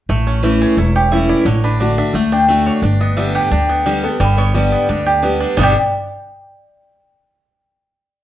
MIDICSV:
0, 0, Header, 1, 6, 480
1, 0, Start_track
1, 0, Tempo, 342661
1, 127, Time_signature, 4, 2, 24, 8
1, 11540, End_track
2, 0, Start_track
2, 0, Title_t, "Mandolin"
2, 0, Program_c, 0, 25
2, 857, Note_on_c, 0, 68, 86
2, 1080, Note_off_c, 0, 68, 0
2, 1096, Note_on_c, 0, 69, 59
2, 1330, Note_off_c, 0, 69, 0
2, 1338, Note_on_c, 0, 73, 91
2, 1560, Note_off_c, 0, 73, 0
2, 1566, Note_on_c, 0, 76, 101
2, 1805, Note_off_c, 0, 76, 0
2, 1808, Note_on_c, 0, 74, 85
2, 2035, Note_off_c, 0, 74, 0
2, 2050, Note_on_c, 0, 73, 73
2, 2287, Note_off_c, 0, 73, 0
2, 2298, Note_on_c, 0, 71, 95
2, 2520, Note_off_c, 0, 71, 0
2, 2526, Note_on_c, 0, 74, 74
2, 2765, Note_off_c, 0, 74, 0
2, 2774, Note_on_c, 0, 76, 92
2, 2998, Note_off_c, 0, 76, 0
2, 3012, Note_on_c, 0, 78, 70
2, 3246, Note_off_c, 0, 78, 0
2, 3251, Note_on_c, 0, 79, 115
2, 3475, Note_off_c, 0, 79, 0
2, 3480, Note_on_c, 0, 76, 83
2, 3722, Note_off_c, 0, 76, 0
2, 3726, Note_on_c, 0, 73, 83
2, 3952, Note_off_c, 0, 73, 0
2, 3958, Note_on_c, 0, 74, 83
2, 4200, Note_off_c, 0, 74, 0
2, 4211, Note_on_c, 0, 75, 98
2, 4437, Note_off_c, 0, 75, 0
2, 4439, Note_on_c, 0, 76, 88
2, 4681, Note_off_c, 0, 76, 0
2, 4690, Note_on_c, 0, 78, 97
2, 4916, Note_off_c, 0, 78, 0
2, 4922, Note_on_c, 0, 79, 82
2, 5828, Note_off_c, 0, 79, 0
2, 7812, Note_on_c, 0, 79, 87
2, 8040, Note_off_c, 0, 79, 0
2, 11540, End_track
3, 0, Start_track
3, 0, Title_t, "Resonator guitar played with a steel bar"
3, 0, Program_c, 1, 25
3, 5355, Note_on_c, 1, 69, 58
3, 5408, Note_on_c, 1, 67, 76
3, 5409, Note_off_c, 1, 69, 0
3, 5652, Note_on_c, 1, 69, 85
3, 5661, Note_off_c, 1, 67, 0
3, 5880, Note_off_c, 1, 69, 0
3, 5886, Note_on_c, 1, 71, 96
3, 6127, Note_off_c, 1, 71, 0
3, 6133, Note_on_c, 1, 73, 109
3, 6365, Note_off_c, 1, 73, 0
3, 6371, Note_on_c, 1, 74, 96
3, 7273, Note_off_c, 1, 74, 0
3, 7821, Note_on_c, 1, 74, 69
3, 8045, Note_off_c, 1, 74, 0
3, 11540, End_track
4, 0, Start_track
4, 0, Title_t, "Five-string banjo"
4, 0, Program_c, 2, 105
4, 133, Note_on_c, 2, 57, 75
4, 377, Note_on_c, 2, 61, 58
4, 607, Note_off_c, 2, 57, 0
4, 612, Note_on_c, 2, 57, 57
4, 845, Note_off_c, 2, 61, 0
4, 862, Note_on_c, 2, 61, 52
4, 1094, Note_on_c, 2, 64, 56
4, 1286, Note_off_c, 2, 57, 0
4, 1340, Note_on_c, 2, 67, 58
4, 1522, Note_off_c, 2, 61, 0
4, 1576, Note_on_c, 2, 61, 53
4, 1767, Note_off_c, 2, 64, 0
4, 1812, Note_on_c, 2, 64, 65
4, 2001, Note_off_c, 2, 67, 0
4, 2041, Note_on_c, 2, 50, 71
4, 2044, Note_off_c, 2, 64, 0
4, 2049, Note_off_c, 2, 61, 0
4, 2294, Note_on_c, 2, 62, 61
4, 2530, Note_off_c, 2, 62, 0
4, 2530, Note_on_c, 2, 62, 61
4, 2720, Note_off_c, 2, 50, 0
4, 2775, Note_off_c, 2, 62, 0
4, 2775, Note_on_c, 2, 62, 59
4, 3010, Note_on_c, 2, 57, 66
4, 3247, Note_off_c, 2, 62, 0
4, 3253, Note_on_c, 2, 62, 60
4, 3466, Note_off_c, 2, 57, 0
4, 3482, Note_on_c, 2, 57, 72
4, 3727, Note_off_c, 2, 62, 0
4, 3732, Note_on_c, 2, 62, 58
4, 3956, Note_off_c, 2, 62, 0
4, 3962, Note_on_c, 2, 62, 62
4, 3963, Note_off_c, 2, 57, 0
4, 4213, Note_on_c, 2, 59, 58
4, 4438, Note_off_c, 2, 62, 0
4, 4444, Note_on_c, 2, 62, 63
4, 4695, Note_on_c, 2, 67, 54
4, 4918, Note_off_c, 2, 62, 0
4, 4924, Note_on_c, 2, 62, 61
4, 5167, Note_off_c, 2, 59, 0
4, 5173, Note_on_c, 2, 59, 58
4, 5405, Note_on_c, 2, 55, 65
4, 5651, Note_off_c, 2, 59, 0
4, 5656, Note_on_c, 2, 59, 59
4, 5878, Note_off_c, 2, 55, 0
4, 5884, Note_on_c, 2, 55, 86
4, 6122, Note_off_c, 2, 59, 0
4, 6128, Note_on_c, 2, 59, 57
4, 6348, Note_off_c, 2, 55, 0
4, 6365, Note_on_c, 2, 55, 58
4, 6595, Note_off_c, 2, 59, 0
4, 6612, Note_on_c, 2, 59, 50
4, 6656, Note_off_c, 2, 67, 0
4, 6844, Note_off_c, 2, 62, 0
4, 6850, Note_on_c, 2, 62, 64
4, 7044, Note_off_c, 2, 55, 0
4, 7094, Note_on_c, 2, 67, 62
4, 7279, Note_off_c, 2, 59, 0
4, 7328, Note_on_c, 2, 59, 56
4, 7527, Note_off_c, 2, 62, 0
4, 7570, Note_on_c, 2, 62, 60
4, 7760, Note_off_c, 2, 67, 0
4, 7804, Note_on_c, 2, 55, 88
4, 7805, Note_off_c, 2, 62, 0
4, 7808, Note_off_c, 2, 59, 0
4, 7831, Note_on_c, 2, 59, 92
4, 7861, Note_on_c, 2, 62, 87
4, 7889, Note_on_c, 2, 67, 92
4, 8035, Note_off_c, 2, 55, 0
4, 8050, Note_off_c, 2, 59, 0
4, 8066, Note_off_c, 2, 62, 0
4, 8081, Note_off_c, 2, 67, 0
4, 11540, End_track
5, 0, Start_track
5, 0, Title_t, "Steel-string acoustic guitar"
5, 0, Program_c, 3, 25
5, 126, Note_on_c, 3, 45, 84
5, 597, Note_on_c, 3, 52, 89
5, 605, Note_on_c, 3, 57, 91
5, 615, Note_on_c, 3, 61, 92
5, 627, Note_on_c, 3, 64, 90
5, 1038, Note_off_c, 3, 45, 0
5, 1057, Note_off_c, 3, 52, 0
5, 1061, Note_off_c, 3, 57, 0
5, 1066, Note_off_c, 3, 61, 0
5, 1072, Note_off_c, 3, 64, 0
5, 1087, Note_on_c, 3, 40, 79
5, 1557, Note_on_c, 3, 52, 76
5, 1568, Note_on_c, 3, 57, 90
5, 1577, Note_on_c, 3, 61, 89
5, 1587, Note_on_c, 3, 64, 99
5, 1998, Note_off_c, 3, 40, 0
5, 2016, Note_off_c, 3, 52, 0
5, 2022, Note_off_c, 3, 57, 0
5, 2027, Note_off_c, 3, 61, 0
5, 2032, Note_off_c, 3, 64, 0
5, 2040, Note_on_c, 3, 45, 99
5, 2514, Note_on_c, 3, 50, 82
5, 2524, Note_on_c, 3, 57, 88
5, 2531, Note_on_c, 3, 62, 106
5, 2545, Note_on_c, 3, 66, 85
5, 2955, Note_off_c, 3, 45, 0
5, 2975, Note_off_c, 3, 50, 0
5, 2980, Note_off_c, 3, 57, 0
5, 2984, Note_off_c, 3, 62, 0
5, 2991, Note_off_c, 3, 66, 0
5, 3002, Note_on_c, 3, 57, 85
5, 3469, Note_off_c, 3, 57, 0
5, 3477, Note_on_c, 3, 50, 85
5, 3485, Note_on_c, 3, 57, 88
5, 3496, Note_on_c, 3, 62, 85
5, 3506, Note_on_c, 3, 66, 90
5, 3937, Note_off_c, 3, 50, 0
5, 3941, Note_off_c, 3, 57, 0
5, 3946, Note_off_c, 3, 62, 0
5, 3951, Note_off_c, 3, 66, 0
5, 3965, Note_on_c, 3, 43, 87
5, 4434, Note_on_c, 3, 50, 91
5, 4446, Note_on_c, 3, 55, 90
5, 4457, Note_on_c, 3, 59, 91
5, 4462, Note_on_c, 3, 67, 95
5, 4878, Note_off_c, 3, 43, 0
5, 4896, Note_off_c, 3, 50, 0
5, 4902, Note_off_c, 3, 55, 0
5, 4907, Note_off_c, 3, 59, 0
5, 4910, Note_off_c, 3, 67, 0
5, 4924, Note_on_c, 3, 50, 72
5, 5387, Note_off_c, 3, 50, 0
5, 5404, Note_on_c, 3, 50, 87
5, 5414, Note_on_c, 3, 55, 86
5, 5424, Note_on_c, 3, 59, 85
5, 5434, Note_on_c, 3, 67, 99
5, 5631, Note_off_c, 3, 67, 0
5, 5642, Note_off_c, 3, 50, 0
5, 5647, Note_off_c, 3, 55, 0
5, 5647, Note_on_c, 3, 67, 53
5, 5652, Note_off_c, 3, 59, 0
5, 5678, Note_on_c, 3, 59, 54
5, 5873, Note_off_c, 3, 67, 0
5, 5889, Note_off_c, 3, 59, 0
5, 5891, Note_on_c, 3, 43, 90
5, 6358, Note_on_c, 3, 50, 89
5, 6371, Note_on_c, 3, 55, 94
5, 6379, Note_on_c, 3, 59, 90
5, 6387, Note_on_c, 3, 67, 97
5, 6803, Note_off_c, 3, 43, 0
5, 6819, Note_off_c, 3, 50, 0
5, 6825, Note_off_c, 3, 55, 0
5, 6829, Note_off_c, 3, 59, 0
5, 6833, Note_off_c, 3, 67, 0
5, 6847, Note_on_c, 3, 50, 85
5, 7298, Note_off_c, 3, 50, 0
5, 7315, Note_on_c, 3, 50, 79
5, 7324, Note_on_c, 3, 55, 83
5, 7335, Note_on_c, 3, 59, 105
5, 7341, Note_on_c, 3, 67, 97
5, 7778, Note_off_c, 3, 50, 0
5, 7782, Note_off_c, 3, 55, 0
5, 7788, Note_off_c, 3, 59, 0
5, 7791, Note_off_c, 3, 67, 0
5, 7800, Note_on_c, 3, 43, 93
5, 7807, Note_on_c, 3, 47, 91
5, 7812, Note_on_c, 3, 50, 91
5, 7817, Note_on_c, 3, 55, 97
5, 7824, Note_on_c, 3, 59, 103
5, 7832, Note_on_c, 3, 67, 99
5, 8001, Note_off_c, 3, 43, 0
5, 8005, Note_off_c, 3, 47, 0
5, 8008, Note_off_c, 3, 50, 0
5, 8010, Note_off_c, 3, 55, 0
5, 8014, Note_off_c, 3, 59, 0
5, 8017, Note_off_c, 3, 67, 0
5, 11540, End_track
6, 0, Start_track
6, 0, Title_t, "Upright bass"
6, 0, Program_c, 4, 32
6, 126, Note_on_c, 4, 33, 93
6, 880, Note_off_c, 4, 33, 0
6, 1078, Note_on_c, 4, 28, 88
6, 1835, Note_off_c, 4, 28, 0
6, 2032, Note_on_c, 4, 33, 102
6, 2791, Note_off_c, 4, 33, 0
6, 2994, Note_on_c, 4, 38, 90
6, 3753, Note_off_c, 4, 38, 0
6, 3951, Note_on_c, 4, 31, 98
6, 4712, Note_off_c, 4, 31, 0
6, 4919, Note_on_c, 4, 38, 91
6, 5677, Note_off_c, 4, 38, 0
6, 5882, Note_on_c, 4, 31, 105
6, 6639, Note_off_c, 4, 31, 0
6, 6849, Note_on_c, 4, 38, 88
6, 7604, Note_off_c, 4, 38, 0
6, 7806, Note_on_c, 4, 31, 98
6, 8036, Note_off_c, 4, 31, 0
6, 11540, End_track
0, 0, End_of_file